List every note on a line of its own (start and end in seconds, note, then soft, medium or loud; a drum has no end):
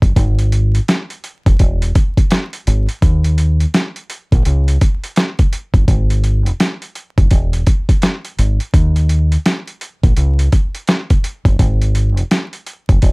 0.02 0.14 G1 medium
0.02 kick loud
0.02 closed hi-hat soft
0.16 0.79 G#1 loud
0.16 kick loud
0.16 closed hi-hat medium
0.39 closed hi-hat medium
0.52 closed hi-hat medium
0.75 closed hi-hat medium
0.88 snare loud
0.88 closed hi-hat loud
1.10 closed hi-hat soft
1.24 closed hi-hat medium
1.46 1.58 F#1 medium
1.46 kick loud
1.46 closed hi-hat soft
1.59 1.91 E1 medium
1.59 kick medium
1.59 closed hi-hat medium
1.82 closed hi-hat medium
1.95 kick medium
1.95 closed hi-hat medium
2.17 kick medium
2.17 closed hi-hat medium
2.31 snare loud
2.31 closed hi-hat medium
2.53 closed hi-hat medium
2.67 2.86 G#1 medium
2.67 closed hi-hat medium
2.89 closed hi-hat medium
3.02 3.64 D#2 loud
3.02 kick loud
3.02 closed hi-hat medium
3.24 closed hi-hat medium
3.38 closed hi-hat medium
3.60 closed hi-hat medium
3.74 snare loud
3.74 closed hi-hat loud
3.96 closed hi-hat soft
4.10 closed hi-hat medium
4.32 4.44 A#1 loud
4.32 kick loud
4.32 closed hi-hat medium
4.45 4.77 C#2 loud
4.45 closed hi-hat medium
4.68 closed hi-hat medium
4.81 kick medium
4.81 closed hi-hat medium
5.04 closed hi-hat medium
5.16 snare loud
5.16 closed hi-hat medium
5.39 kick medium
5.39 closed hi-hat medium
5.53 closed hi-hat medium
5.74 5.86 G1 medium
5.74 kick loud
5.74 closed hi-hat soft
5.88 6.50 G#1 loud
5.88 kick loud
5.88 closed hi-hat medium
6.10 closed hi-hat medium
6.24 closed hi-hat medium
6.46 closed hi-hat medium
6.60 snare loud
6.60 closed hi-hat loud
6.82 closed hi-hat medium
6.95 closed hi-hat medium
7.18 7.29 F#1 medium
7.18 kick loud
7.18 closed hi-hat medium
7.31 7.62 E1 medium
7.31 kick medium
7.31 closed hi-hat medium
7.53 closed hi-hat medium
7.67 kick medium
7.67 closed hi-hat medium
7.89 kick medium
7.89 closed hi-hat medium
8.02 snare loud
8.02 closed hi-hat medium
8.25 closed hi-hat medium
8.39 8.58 G#1 medium
8.39 closed hi-hat medium
8.60 closed hi-hat soft
8.74 9.36 D#2 loud
8.74 kick loud
8.74 closed hi-hat medium
8.96 closed hi-hat medium
9.09 closed hi-hat medium
9.32 closed hi-hat medium
9.46 snare loud
9.46 closed hi-hat loud
9.67 closed hi-hat medium
9.81 closed hi-hat medium
10.03 10.15 A#1 loud
10.03 kick loud
10.03 closed hi-hat medium
10.16 10.48 C#2 loud
10.16 closed hi-hat medium
10.39 closed hi-hat medium
10.52 kick medium
10.52 closed hi-hat medium
10.75 closed hi-hat medium
10.88 snare loud
10.88 closed hi-hat medium
11.10 kick medium
11.10 closed hi-hat medium
11.24 closed hi-hat medium
11.45 11.57 G1 medium
11.45 kick loud
11.45 closed hi-hat medium
11.59 12.21 G#1 loud
11.59 kick loud
11.59 closed hi-hat medium
11.81 closed hi-hat medium
11.95 closed hi-hat medium
12.17 closed hi-hat medium
12.31 snare loud
12.31 closed hi-hat loud
12.53 closed hi-hat soft
12.67 closed hi-hat medium
12.89 13.01 F#1 medium
12.89 kick loud
12.89 closed hi-hat soft
13.02 13.12 E1 medium
13.02 kick medium
13.02 closed hi-hat medium